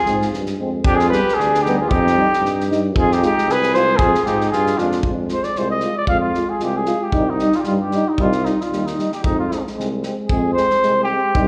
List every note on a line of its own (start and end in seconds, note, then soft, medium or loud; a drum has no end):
0.00 0.29 F4 medium
0.00 0.28 G#4 loud
0.06 0.30 G#2 loud
0.06 0.17 G#3 medium
0.06 0.17 C4 medium
0.06 snare soft
0.22 snare soft
0.33 0.56 G2 medium
0.33 snare soft
0.46 snare soft
0.59 0.86 F2 medium
0.59 0.69 G#3 medium
0.59 0.71 C4 medium
0.84 1.14 F2 loud
0.84 1.02 D4 medium
0.84 0.97 G4 loud
0.84 kick loud
0.95 1.08 G#4 medium
0.99 1.12 F4 medium
0.99 snare soft
1.09 1.22 G3 medium
1.09 1.36 B4 loud
1.09 snare soft
1.13 1.23 B3 medium
1.13 1.42 G4 medium
1.29 snare soft
1.34 1.63 G#4 medium
1.39 1.92 D2 loud
1.39 1.67 D4 medium
1.39 snare soft
1.54 snare soft
1.62 1.75 G3 medium
1.62 1.78 D#4 medium
1.62 1.76 G4 loud
1.62 snare soft
1.67 1.76 B3 medium
1.76 1.90 G#4 medium
1.81 1.94 F4 medium
1.88 2.19 F2 loud
1.88 2.69 D#4 medium
1.88 2.67 G4 loud
1.88 kick medium
2.07 snare soft
2.16 2.26 G3 medium
2.16 2.28 D#4 medium
2.33 snare soft
2.42 2.97 G2 loud
2.42 snare soft
2.60 snare soft
2.70 2.80 G3 medium
2.70 2.80 D#4 medium
2.70 snare soft
2.95 3.24 F2 loud
2.95 3.16 F4 medium
2.95 3.14 G#4 loud
2.95 kick medium
3.12 3.23 D#4 medium
3.12 3.22 G4 medium
3.12 snare soft
3.22 3.34 G#3 medium
3.22 3.52 D#4 medium
3.22 3.32 F4 medium
3.22 3.53 G4 loud
3.22 snare soft
3.38 snare soft
3.47 4.01 C2 medium
3.47 3.77 G#4 loud
3.47 snare soft
3.51 3.76 B4 loud
3.63 snare soft
3.74 3.86 G#3 medium
3.74 3.85 F4 medium
3.74 4.04 G#4 medium
3.74 3.99 C5 loud
3.74 snare soft
3.98 4.14 F2 loud
3.98 4.24 G#4 loud
3.98 kick loud
4.03 4.26 F4 medium
4.15 snare soft
4.25 4.49 G#2 medium
4.25 4.38 G#3 medium
4.25 4.50 D#4 medium
4.25 4.37 F4 medium
4.25 4.49 G4 medium
4.25 snare soft
4.41 snare soft
4.50 4.76 G2 loud
4.50 4.80 F4 medium
4.50 4.79 G#4 medium
4.50 snare soft
4.67 snare soft
4.78 5.01 F2 medium
4.78 4.89 G#3 medium
4.78 5.04 D4 medium
4.78 5.04 F4 medium
4.78 4.89 F4 medium
4.78 snare soft
4.92 snare soft
5.03 5.33 F2 medium
5.03 5.16 G#3 soft
5.03 5.15 F4 medium
5.03 kick medium
5.29 5.41 G#3 soft
5.29 5.40 F4 soft
5.29 5.45 C5 medium
5.29 snare soft
5.43 5.60 D5 medium
5.43 snare soft
5.56 5.86 C2 medium
5.56 5.68 G#3 medium
5.56 5.67 F4 medium
5.56 5.70 C5 medium
5.56 snare soft
5.70 5.95 D#5 medium
5.80 5.94 F4 medium
5.80 snare soft
5.84 5.94 G#3 medium
5.97 6.08 D5 medium
6.07 6.38 F2 medium
6.07 6.20 G#3 medium
6.07 6.19 F4 medium
6.07 6.19 F5 medium
6.07 kick medium
6.20 6.51 F4 medium
6.34 6.45 G#3 medium
6.34 6.46 F4 medium
6.34 snare soft
6.50 6.62 G#4 medium
6.60 6.90 C2 medium
6.60 6.71 G#3 medium
6.60 6.71 F4 medium
6.60 6.78 G4 medium
6.60 snare soft
6.76 7.05 G#4 medium
6.86 6.98 G#3 medium
6.86 6.97 F4 medium
6.86 snare soft
7.03 7.31 G4 medium
7.12 7.43 C2 medium
7.12 7.24 G3 medium
7.12 7.24 D#4 medium
7.12 kick medium
7.30 7.57 D#4 medium
7.39 7.50 G3 medium
7.39 7.52 D#4 medium
7.39 snare soft
7.52 7.61 F4 medium
7.52 snare soft
7.59 7.66 F4 medium
7.59 7.62 G4 medium
7.64 7.96 G2 medium
7.64 7.76 G3 medium
7.64 7.77 D#4 medium
7.64 7.73 F4 medium
7.64 snare soft
7.81 8.10 G4 medium
7.92 8.02 G3 medium
7.92 8.05 D#4 medium
7.92 snare soft
8.08 8.22 D#4 medium
8.18 8.49 C2 loud
8.18 8.29 G3 medium
8.18 8.31 D#4 medium
8.18 8.46 F4 medium
8.18 kick medium
8.32 snare soft
8.45 8.56 G3 soft
8.45 8.63 D#4 medium
8.45 8.57 D#4 medium
8.45 snare soft
8.61 8.88 F4 medium
8.61 snare soft
8.71 9.01 D#2 medium
8.71 8.82 G3 medium
8.71 8.84 D#4 medium
8.71 snare soft
8.86 9.13 D#4 medium
8.86 snare soft
8.97 9.08 G3 medium
8.97 9.10 D#4 medium
8.97 snare soft
9.12 9.23 G4 medium
9.12 snare soft
9.23 9.54 F2 loud
9.23 9.34 G#3 soft
9.23 9.35 C4 medium
9.23 9.37 D#4 medium
9.23 kick medium
9.39 9.63 F4 medium
9.51 9.61 G#3 soft
9.51 9.62 C4 medium
9.51 snare soft
9.67 snare soft
9.77 10.07 C2 medium
9.77 9.87 G#3 medium
9.77 9.88 C4 medium
9.77 snare soft
10.03 10.15 G#3 medium
10.03 10.15 C4 medium
10.03 snare soft
10.28 10.60 F2 loud
10.28 10.42 G#3 medium
10.28 10.40 C4 medium
10.28 10.52 G#4 medium
10.28 kick medium
10.53 10.67 G#3 medium
10.53 11.03 C5 loud
10.57 10.68 C4 medium
10.57 snare soft
10.70 snare soft
10.83 11.13 C2 medium
10.83 10.93 G#3 medium
10.83 10.94 C4 medium
10.83 snare soft
11.03 11.48 G4 medium
11.09 11.20 G#3 medium
11.09 11.19 C4 medium
11.35 11.48 C2 loud
11.35 11.47 G3 medium
11.35 11.45 D#4 medium
11.35 kick medium